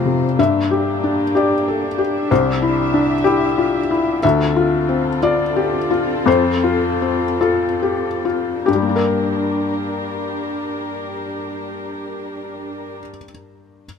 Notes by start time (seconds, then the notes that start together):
Already playing: F2 C3 F3 C4 F4 C5
0.05 C3
0.38 G2 A#3 D4 G4 E5
0.71 G4
1.04 D4
1.35 G4 D5
1.68 A4
1.98 G4
2.30 C2 G4 C5 E5
2.62 E4
2.94 D4
3.24 E4 G4
3.58 F4
3.91 E4
4.23 D2 C4 F4 A4 E5
4.56 F4
4.89 C4
5.23 F4 D5
5.56 G4
5.91 F4
6.26 F2 C5
6.64 F4
7.02 C4
7.41 F4 A4
7.83 G4
8.25 F4
8.66 G2 D4 G4 A#4
8.75 G3
8.82 A#3
8.89 D4
8.96 A#4